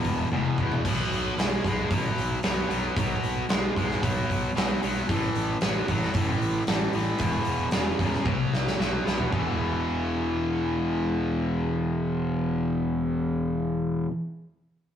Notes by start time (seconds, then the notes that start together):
Already playing: E2 B2
0.04 E1, kick, open hi-hat
0.32 E1 E2 B2, high tom
0.58 E1 E2 B2, kick
0.72 floor tom
0.85 B1 B2 F#3, kick, open hi-hat, crash
1.12 B1, open hi-hat
1.38 B1 B2 G#3, snare, open hi-hat
1.64 B1 B2 G#3, kick, open hi-hat
1.91 A1 B2 F#3, kick, open hi-hat
2.18 B1, open hi-hat
2.43 B1 B2 F#3, snare, open hi-hat
2.69 B1 B2 F#3, open hi-hat
2.96 B1 B2 F#3, kick, open hi-hat
3.23 B1, open hi-hat
3.49 B1 B2 G#3, snare, open hi-hat
3.76 B1 B2 G#3, kick, open hi-hat
3.91 snare
4.02 B1 B2 F#3, kick, open hi-hat
4.30 B1, kick, open hi-hat
4.56 B1 B2 F#3, snare, open hi-hat
4.82 B1 B2 F#3, open hi-hat
5.08 A1 A2 E3, kick, open hi-hat
5.35 A1, open hi-hat
5.61 A1 A2 F#3, snare, open hi-hat
5.88 A1 A2 F#3, kick, open hi-hat
6.02 snare
6.14 F#1 A2 E3, kick, open hi-hat
6.41 A1, open hi-hat
6.67 A1 A2 E3, snare, open hi-hat
6.93 A1 A2 E3, open hi-hat
7.19 E1 E2 B2, kick, open hi-hat
7.45 E1, open hi-hat
7.71 E1 E2 C#3, snare, open hi-hat
7.99 E1 E2 C#3, kick, open hi-hat
8.13 snare
8.25 B1 B2 F#3, kick, high tom
8.54 B1, snare
8.67 snare
8.79 B1 B2 F#3, snare
9.05 B1 B2 F#3, snare
9.18 floor tom
9.31 E1 E2 B2 E3, kick